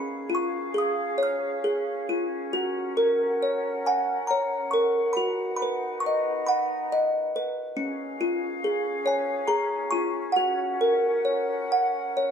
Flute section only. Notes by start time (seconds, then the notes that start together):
Already playing: C#4 G#4 F5
2.52 A#4 F#5
5.17 D#4 B4
7.78 C#4 G#4 F5
10.36 A#4 F#5